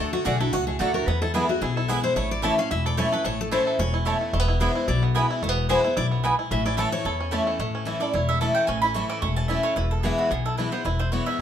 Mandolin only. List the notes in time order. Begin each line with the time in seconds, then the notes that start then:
0.24 A3 F#4 D5 F#5
0.79 A3 F#4 D5 F#5
1.34 B3 E4 B4 G#5
1.88 B3 E4 B4 G#5
2.42 A3 E4 C#5 A5
2.97 A3 E4 C#5 A5
3.51 A3 E4 C#5 A5
4.05 A3 E4 C#5 A5
4.60 B3 E4 B4 G#5
5.15 B3 E4 B4 G#5
5.69 B3 E4 B4 G#5
6.24 B3 E4 B4 G#5
6.77 A3 E4 C#5 A5
7.31 A3 E4 C#5 A5
8.01 D5
8.14 C#5
8.29 E5
8.41 A5
8.55 G5
8.67 G#5
8.82 B5
8.94 C#6
9.10 D6
9.22 C#6
9.36 A5
9.48 E5
9.63 C#5
9.76 B4
9.91 A4
10.03 G#4
10.18 F#4
10.31 G#4
10.46 A4
10.57 B4
10.72 C5
10.84 B4
10.99 C5
11.12 C#5
11.26 E5